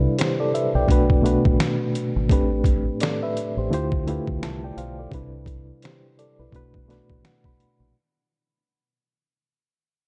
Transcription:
0.00 0.51 C3 medium
0.00 0.51 G3 medium
0.00 0.52 D4 medium
0.00 0.52 E4 medium
0.00 0.40 A4 soft
0.00 0.19 B4 medium
0.00 0.40 D5 medium
0.19 0.39 G4 medium
0.19 0.38 C5 medium
0.19 finger snap medium
0.19 snare medium
0.19 closed hi-hat medium
0.40 0.53 A4 medium
0.40 0.53 D5 medium
0.54 0.74 B4 soft
0.54 0.74 E5 medium
0.54 closed hi-hat soft
0.75 0.86 B1 medium
0.75 1.08 D5 medium
0.75 1.08 G5 medium
0.88 1.36 B1 medium
0.88 1.17 B2 medium
0.88 1.18 A3 medium
0.88 1.18 D4 medium
0.88 1.19 F#4 medium
0.88 kick medium
0.88 closed hi-hat medium
0.92 1.19 B4 loud
1.10 kick medium
1.22 2.02 B2 medium
1.22 2.03 A3 medium
1.22 2.03 D4 medium
1.22 2.04 F#4 medium
1.22 2.04 B4 medium
1.22 closed hi-hat medium
1.45 1.57 A1 medium
1.45 kick medium
1.60 finger snap medium
1.60 snare loud
1.60 closed hi-hat medium
1.95 closed hi-hat medium
2.16 2.27 G#1 loud
2.29 2.88 A1 loud
2.29 3.34 A2 medium
2.29 3.34 A3 medium
2.29 3.34 C4 medium
2.29 3.34 D4 medium
2.29 3.01 G4 medium
2.29 3.01 B4 medium
2.29 kick loud
2.29 closed hi-hat medium
2.64 kick medium
2.64 closed hi-hat medium
3.00 3.21 A4 medium
3.00 3.21 D5 medium
3.00 finger snap medium
3.00 snare loud
3.00 closed hi-hat medium
3.23 3.56 B4 medium
3.23 3.56 E5 medium
3.37 closed hi-hat soft
3.57 3.68 A1 medium
3.57 3.72 G4 medium
3.57 3.73 C5 medium
3.71 4.18 D2 medium
3.71 4.00 D3 medium
3.71 4.00 A3 medium
3.71 4.01 E4 medium
3.71 4.01 F4 medium
3.71 4.02 G4 medium
3.71 4.02 C5 medium
3.71 closed hi-hat medium
3.92 kick medium
4.07 4.86 D3 medium
4.07 4.86 A3 medium
4.07 4.86 E4 medium
4.07 4.87 F4 medium
4.07 4.87 G4 medium
4.07 4.43 B4 medium
4.07 closed hi-hat medium
4.27 4.43 D2 medium
4.27 kick medium
4.42 4.71 C2 medium
4.42 4.63 E5 soft
4.42 4.62 A5 medium
4.42 finger snap medium
4.42 snare loud
4.42 closed hi-hat medium
4.64 4.77 D5 medium
4.64 4.77 G5 medium
4.77 5.06 B1 medium
4.77 4.97 C5 medium
4.77 4.97 F5 medium
4.77 closed hi-hat medium
4.99 5.32 A4 soft
4.99 5.32 D5 medium
5.11 5.71 C2 medium
5.11 6.16 C3 medium
5.11 6.16 G3 medium
5.11 6.16 D4 medium
5.11 5.83 E4 medium
5.11 5.83 B4 medium
5.11 kick loud
5.11 closed hi-hat medium
5.46 kick medium
5.46 closed hi-hat medium
5.82 6.17 G4 medium
5.82 6.17 C5 medium
5.82 finger snap medium
5.82 snare medium
5.82 closed hi-hat medium
6.19 6.39 A4 medium
6.19 6.38 D5 medium
6.19 closed hi-hat soft
6.39 6.51 B1 medium
6.39 6.73 E4 medium
6.39 6.55 B4 medium
6.52 7.00 B1 loud
6.52 6.82 B2 medium
6.52 6.83 A3 medium
6.52 6.83 D4 medium
6.52 6.84 F#4 medium
6.52 6.84 B4 loud
6.52 kick medium
6.52 closed hi-hat medium
6.74 kick medium
6.87 7.67 B2 medium
6.87 7.68 A3 medium
6.87 7.68 D4 medium
6.87 7.68 F#4 medium
6.87 7.69 B4 medium
6.87 7.21 D5 medium
6.87 snare soft
6.87 closed hi-hat medium
7.10 7.21 A1 medium
7.10 kick medium
7.25 7.44 F#5 medium
7.25 finger snap medium
7.25 snare loud
7.25 closed hi-hat medium
7.44 7.91 B5 medium
7.44 kick medium
7.60 closed hi-hat medium
7.80 7.92 A#1 medium

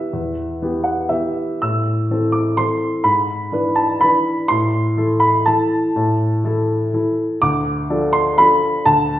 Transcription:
0.00 0.60 E5 medium
0.13 0.59 E2 soft
0.62 1.07 E3 soft
0.62 1.07 B3 soft
0.62 1.07 G4 soft
0.84 1.09 F#5 medium
1.09 1.58 E3 soft
1.09 1.58 B3 soft
1.09 1.59 G4 soft
1.09 1.62 E5 medium
1.62 2.09 A2 medium
1.62 2.34 E6 medium
2.11 2.55 E3 soft
2.11 2.55 C4 soft
2.11 2.55 A4 soft
2.32 2.58 D6 medium
2.57 3.02 E3 soft
2.57 3.02 C4 soft
2.57 3.02 A4 soft
2.57 3.05 C6 medium
3.04 3.51 G#2 medium
3.04 3.76 B5 medium
3.52 3.98 E3 soft
3.52 3.98 D4 soft
3.52 3.98 B4 soft
3.76 4.01 A5 medium
4.01 4.46 E3 soft
4.01 4.46 D4 soft
4.01 4.46 B4 soft
4.01 4.49 B5 medium
4.48 4.95 A2 medium
4.48 5.20 C6 medium
4.97 5.42 E3 soft
4.97 5.42 E4 medium
4.97 5.43 A4 medium
5.20 5.45 B5 medium
5.46 5.91 E3 soft
5.46 5.92 E4 soft
5.46 5.92 A4 soft
5.46 6.43 A5 medium
5.96 6.42 A2 medium
6.44 6.90 E3 soft
6.44 6.90 E4 medium
6.44 6.91 A4 medium
6.93 7.38 E3 soft
6.93 7.38 E4 soft
6.93 7.38 A4 soft
7.42 7.88 D2 medium
7.42 8.13 D6 medium
7.90 8.35 F3 medium
7.90 8.35 D4 soft
7.90 8.35 A4 medium
8.13 8.38 C6 medium
8.38 8.83 F3 soft
8.38 8.84 D4 soft
8.38 8.84 A4 medium
8.38 8.87 B5 loud
8.86 9.20 D2 medium
8.86 9.20 A5 medium

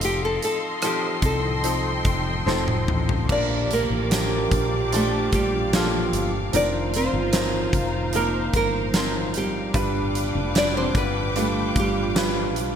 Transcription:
0.00 0.38 F1 medium
0.00 0.76 F3 medium
0.00 0.77 C4 medium
0.00 0.77 D#4 medium
0.00 0.77 A4 medium
0.00 3.26 A4 medium
0.00 3.26 D#5 medium
0.00 1.19 F5 medium
0.00 3.26 C6 medium
0.00 closed hi-hat medium
0.05 0.22 G4 medium
0.25 0.42 A4 medium
0.43 0.84 A4 medium
0.43 closed hi-hat medium
0.82 1.60 F3 medium
0.82 1.60 C4 medium
0.82 1.60 D#4 medium
0.82 1.22 G4 medium
0.82 1.61 A4 medium
0.82 cross-stick loud
0.82 closed hi-hat medium
1.22 2.01 C2 medium
1.22 2.86 A4 medium
1.22 3.27 G5 medium
1.22 kick medium
1.22 closed hi-hat medium
1.64 2.43 F3 medium
1.64 2.43 C4 medium
1.64 2.43 D#4 medium
1.64 2.43 A4 medium
1.64 closed hi-hat medium
2.05 2.44 F1 medium
2.05 kick medium
2.05 closed hi-hat medium
2.46 2.85 F1 medium
2.46 3.25 F3 medium
2.46 3.25 C4 medium
2.46 3.26 D#4 medium
2.46 3.26 A4 medium
2.46 snare soft
2.68 high tom medium
2.88 3.26 A1 medium
2.88 mid tom medium
3.09 floor tom medium
3.29 3.87 A#1 medium
3.29 4.48 D3 soft
3.29 4.07 F3 medium
3.29 4.07 A#3 medium
3.29 4.08 D4 medium
3.29 3.69 D4 medium
3.29 6.50 F4 medium
3.29 6.49 G4 loud
3.29 4.08 A#4 medium
3.29 6.50 D5 medium
3.29 3.69 D5 loud
3.29 12.76 F5 medium
3.29 6.50 D6 medium
3.29 kick loud
3.29 crash medium
3.71 4.90 A#3 medium
3.71 4.95 A#4 loud
3.71 closed hi-hat medium
3.90 4.48 A1 medium
4.11 4.88 F3 medium
4.11 4.88 A#3 medium
4.11 4.88 D4 medium
4.11 4.89 A#4 medium
4.11 snare loud
4.11 closed hi-hat loud
4.51 5.28 A#1 medium
4.51 kick medium
4.51 closed hi-hat medium
4.92 5.69 A#2 medium
4.92 5.69 F3 medium
4.92 5.31 A3 medium
4.92 5.69 D4 medium
4.92 5.34 A4 medium
4.92 5.70 D5 medium
4.92 closed hi-hat medium
5.33 6.09 A#1 medium
5.33 5.71 G3 medium
5.33 5.75 G4 medium
5.33 kick medium
5.33 closed hi-hat medium
5.73 6.49 F3 medium
5.73 6.31 F3 medium
5.73 6.50 A#3 medium
5.73 6.50 D4 medium
5.73 6.30 F4 medium
5.73 6.50 A4 medium
5.73 snare loud
5.73 closed hi-hat medium
6.13 6.50 G1 medium
6.13 closed hi-hat medium
6.53 7.09 F1 loud
6.53 7.30 D#3 medium
6.53 7.29 F3 medium
6.53 7.29 C4 medium
6.53 6.92 D4 medium
6.53 9.44 F4 loud
6.53 7.30 A#4 medium
6.53 9.71 C5 medium
6.53 6.92 D5 medium
6.53 9.71 A#5 medium
6.53 closed hi-hat medium
6.94 8.11 C4 medium
6.94 8.16 C5 medium
6.94 closed hi-hat medium
7.13 7.69 G1 medium
7.32 8.09 F3 medium
7.32 8.10 C4 medium
7.32 8.10 D#4 medium
7.32 8.10 A#4 medium
7.32 snare loud
7.32 closed hi-hat medium
7.73 8.50 F1 medium
7.73 kick medium
7.73 closed hi-hat medium
8.12 8.89 F3 medium
8.12 8.52 A#3 medium
8.12 8.90 C4 medium
8.12 8.90 D#4 medium
8.12 8.90 A#4 medium
8.12 8.55 A#4 medium
8.12 closed hi-hat medium
8.54 9.70 G1 medium
8.54 8.92 A#3 medium
8.54 8.96 A#4 medium
8.54 kick medium
8.54 closed hi-hat medium
8.93 9.70 F3 medium
8.93 9.70 C4 medium
8.93 9.32 C4 medium
8.93 9.70 D#4 medium
8.93 9.71 A#4 medium
8.93 9.36 C5 medium
8.93 snare loud
8.93 closed hi-hat medium
9.34 10.52 G3 medium
9.34 10.60 G4 medium
9.34 closed hi-hat medium
9.73 10.31 G1 loud
9.73 10.91 G2 medium
9.73 10.50 G3 medium
9.73 10.51 D4 medium
9.73 11.31 D4 loud
9.73 10.51 F4 medium
9.73 12.76 B4 medium
9.73 10.51 B4 loud
9.73 12.76 G5 medium
9.73 12.76 D6 medium
9.73 kick loud
9.73 closed hi-hat medium
10.15 closed hi-hat medium
10.35 10.91 F1 medium
10.55 11.31 G3 medium
10.55 11.32 D4 medium
10.55 10.75 D4 medium
10.55 11.32 F4 medium
10.55 11.32 B4 medium
10.55 10.77 D5 loud
10.55 snare loud
10.55 closed hi-hat loud
10.77 10.95 C4 medium
10.77 10.97 C5 loud
10.95 11.72 G1 medium
10.95 11.34 B3 medium
10.95 11.38 B4 medium
10.95 kick loud
10.95 closed hi-hat medium
11.35 12.12 G3 medium
11.35 11.74 A3 medium
11.35 12.12 D4 medium
11.35 12.76 F4 loud
11.35 12.12 F4 medium
11.35 11.74 A4 medium
11.35 12.12 B4 medium
11.35 closed hi-hat medium
11.76 12.56 G1 medium
11.76 12.54 G3 medium
11.76 12.54 G4 medium
11.76 kick medium
11.76 closed hi-hat medium
12.15 12.76 G3 medium
12.15 12.76 D4 medium
12.15 12.76 F4 medium
12.15 12.76 B4 medium
12.15 snare loud
12.15 closed hi-hat medium
12.56 12.76 B1 medium
12.56 closed hi-hat medium

